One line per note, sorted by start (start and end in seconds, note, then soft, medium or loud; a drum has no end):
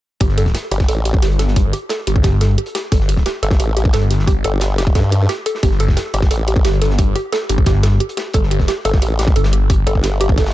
0.20 0.53 G1 medium
0.20 0.26 G4 loud
0.20 kick loud
0.20 closed hi-hat medium
0.29 snare soft
0.38 0.46 A4 loud
0.38 closed hi-hat medium
0.46 kick medium
0.46 snare soft
0.55 0.63 G4 medium
0.55 snare loud
0.55 closed hi-hat medium
0.71 0.87 G1 medium
0.71 0.76 G4 loud
0.71 closed hi-hat medium
0.80 kick loud
0.80 snare soft
0.88 1.21 A1 loud
0.88 0.97 A4 loud
0.88 closed hi-hat medium
1.05 1.14 G4 medium
1.05 closed hi-hat medium
1.14 kick loud
1.22 1.72 G1 medium
1.22 1.27 G4 loud
1.22 snare loud
1.22 closed hi-hat medium
1.31 closed hi-hat soft
1.39 1.48 A4 loud
1.39 snare medium
1.39 closed hi-hat loud
1.39 closed hi-hat medium
1.48 snare medium
1.56 1.65 G4 medium
1.56 kick loud
1.56 closed hi-hat medium
1.73 1.78 G4 loud
1.73 closed hi-hat medium
1.89 1.98 A4 loud
1.89 snare loud
1.89 closed hi-hat medium
2.07 2.57 G1 medium
2.07 2.15 G4 medium
2.07 closed hi-hat medium
2.16 kick loud
2.23 2.29 G4 loud
2.23 kick loud
2.23 snare medium
2.23 closed hi-hat medium
2.41 2.49 A4 loud
2.41 snare medium
2.41 closed hi-hat medium
2.58 2.66 G4 medium
2.58 closed hi-hat medium
2.66 closed hi-hat medium
2.75 2.80 G4 loud
2.75 snare loud
2.75 closed hi-hat medium
2.75 closed hi-hat loud
2.92 3.24 G1 medium
2.92 3.00 A4 loud
2.92 kick loud
2.92 closed hi-hat medium
2.93 closed hi-hat medium
3.00 snare soft
3.09 3.17 G4 medium
3.09 closed hi-hat loud
3.09 closed hi-hat medium
3.17 kick medium
3.17 snare soft
3.26 3.31 G4 medium
3.26 snare loud
3.26 closed hi-hat medium
3.43 3.58 G1 loud
3.43 3.51 A4 loud
3.43 closed hi-hat medium
3.51 kick loud
3.51 snare soft
3.60 3.92 A1 loud
3.60 3.68 G4 medium
3.60 closed hi-hat medium
3.77 3.82 G4 loud
3.77 closed hi-hat medium
3.85 kick loud
3.93 4.43 G1 medium
3.93 4.02 A4 loud
3.93 snare loud
3.93 closed hi-hat medium
4.02 closed hi-hat soft
4.11 4.19 G4 medium
4.11 snare soft
4.11 closed hi-hat loud
4.11 closed hi-hat medium
4.19 snare medium
4.28 4.32 G4 loud
4.28 kick loud
4.28 closed hi-hat medium
4.44 4.94 G1 loud
4.44 4.53 A4 loud
4.44 closed hi-hat medium
4.61 4.70 G4 medium
4.61 snare loud
4.61 closed hi-hat medium
4.78 4.83 G4 loud
4.78 snare loud
4.78 closed hi-hat medium
4.87 kick loud
4.95 5.28 G2 loud
4.95 5.04 A4 loud
4.95 kick loud
4.95 snare loud
4.95 closed hi-hat medium
5.12 5.20 G4 medium
5.12 closed hi-hat medium
5.29 5.34 G4 loud
5.29 snare loud
5.29 closed hi-hat medium
5.46 5.54 A4 loud
5.46 closed hi-hat medium
5.55 snare medium
5.63 5.96 G1 loud
5.63 5.68 G4 loud
5.63 kick loud
5.63 closed hi-hat medium
5.71 snare soft
5.80 5.88 A4 loud
5.80 closed hi-hat medium
5.88 kick medium
5.88 snare soft
5.97 6.05 G4 medium
5.97 snare loud
5.97 closed hi-hat medium
6.14 6.29 G1 loud
6.14 6.19 G4 loud
6.14 closed hi-hat medium
6.22 kick loud
6.22 snare medium
6.31 6.63 A1 medium
6.31 6.39 A4 loud
6.31 closed hi-hat medium
6.47 6.56 G4 medium
6.47 closed hi-hat medium
6.56 kick loud
6.65 7.14 G1 medium
6.65 6.70 G4 loud
6.65 snare loud
6.65 closed hi-hat medium
6.73 closed hi-hat soft
6.82 6.90 A4 medium
6.82 snare medium
6.82 closed hi-hat medium
6.90 snare medium
6.98 7.07 G4 medium
6.98 kick loud
6.98 closed hi-hat medium
7.16 7.21 G4 loud
7.16 closed hi-hat medium
7.32 7.41 A4 loud
7.32 snare loud
7.32 closed hi-hat medium
7.49 7.99 G1 loud
7.49 7.58 G4 medium
7.49 closed hi-hat medium
7.58 kick loud
7.66 7.71 G4 loud
7.66 kick loud
7.66 snare loud
7.66 closed hi-hat medium
7.83 7.92 A4 loud
7.83 snare loud
7.83 closed hi-hat medium
8.00 8.09 G4 medium
8.00 closed hi-hat medium
8.09 closed hi-hat medium
8.17 8.22 G4 medium
8.17 snare medium
8.17 closed hi-hat medium
8.34 8.67 G1 medium
8.34 8.43 A4 loud
8.34 kick loud
8.34 closed hi-hat loud
8.34 closed hi-hat medium
8.43 snare soft
8.51 8.59 G4 medium
8.51 closed hi-hat medium
8.60 kick medium
8.60 snare soft
8.68 8.73 G4 loud
8.68 snare loud
8.68 closed hi-hat medium
8.85 9.01 G1 loud
8.85 8.93 A4 loud
8.85 closed hi-hat medium
8.93 kick loud
8.93 snare soft
9.02 9.35 A1 medium
9.02 9.10 G4 medium
9.02 closed hi-hat medium
9.19 9.24 G4 loud
9.19 snare loud
9.19 closed hi-hat medium
9.28 kick loud
9.36 9.85 G1 medium
9.36 9.44 A4 loud
9.36 closed hi-hat medium
9.44 snare loud
9.44 closed hi-hat medium
9.53 9.61 G4 medium
9.53 closed hi-hat medium
9.70 9.75 G4 loud
9.70 kick loud
9.70 closed hi-hat medium
9.70 closed hi-hat loud
9.87 10.54 G1 loud
9.87 9.95 A4 loud
9.87 closed hi-hat medium
9.95 kick medium
10.03 10.12 G4 medium
10.03 snare loud
10.03 closed hi-hat medium
10.21 10.26 G4 loud
10.21 closed hi-hat medium
10.29 kick loud
10.38 10.46 A4 loud
10.38 kick medium
10.38 snare medium
10.38 closed hi-hat medium
10.46 snare medium
10.46 closed hi-hat medium
10.50 snare medium